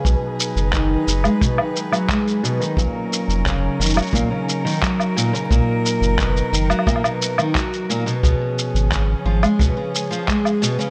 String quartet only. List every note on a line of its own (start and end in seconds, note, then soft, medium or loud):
0.00 2.74 G#4 medium
0.05 8.19 F#3 medium
0.05 2.75 D#4 medium
0.05 2.75 B4 medium
2.76 5.47 C#4 medium
2.76 8.19 D#4 medium
2.76 8.19 A#4 medium
8.23 10.90 F3 medium
8.23 10.90 C#4 medium
8.23 10.90 G#4 medium